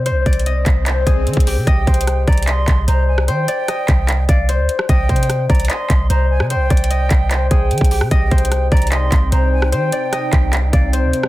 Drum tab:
HH |x-----------x---x---x---x-----------x-----------x-----------x-----------x---x---x---o-----------|x-----------x---x---x---x-----------x--x--x--x--x-----------x-----------x-----------------------|x-----------x-----------x-----------x-----------x-----------x-----------x-----------x-----------|x-----------x---x---x---x-----------x--x--x--x--x-----------x-----------x-----------------------|
CP |------------------------------------x-----------x-----------------------------------------------|------------------------------------------------x-----------x-----------------------------------|------------------------------------x-----------x-----------------------------------------------|------------------------------------------------x-----------x-----------------------------------|
SD |------------------------------------------------------------------------------------------------|------------------------r-----------------------------------------------------------------r-----|------------------------r-----------------------------------------------------------------r-----|------------------------r-----------------------------------------------------------------r-----|
BD |------------o-----------------------o-----------------------o-----------------o-----------------|o-----------o-----------------------o-----------------------o-----------------------------------|------------------------------------o-----------------------o-----------------------------------|o-----------o-----------------------o-----------------------o-----------------------------------|

HH |x-----------x---x---x---x-----------x-----------x-----------x-----------x---x---x---o-----------|x-----------x---x---x---x-----------x--x--x--x--x-----------x-----------x-----------------------|x-----------x-----------x-----------x-----------x-----------x-----------x-----------x-----------|
CP |------------------------------------x-----------x-----------------------------------------------|------------------------------------------------x-----------x-----------------------------------|------------------------------------x-----------x-----------------------------------------------|
SD |------------------------------------------------------------------------------------------r-----|------------------------r-----------------------------------------------------------------r-----|------------------------r-----------------------------------------------------------------r-----|
BD |------------o-----------------------o-----------------------o-----------------o-----------------|o-----------o-----------------------o-----------------------o-----------------------------------|------------------------------------o-----------------------o-----------------------------------|